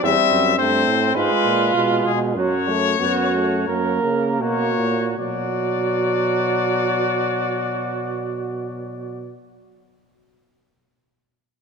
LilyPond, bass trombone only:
\new Staff \with { instrumentName = "Bass trombone" } { \clef bass \time 4/4 \key b \minor \tempo 4 = 75 e,8 fis,8 g,8 a,8 aes,8 ais,8 ces8 ces8 | fis,4 fis,4 fis,8 cis8 b,8 ais,8 | b,1~ | b,1 | }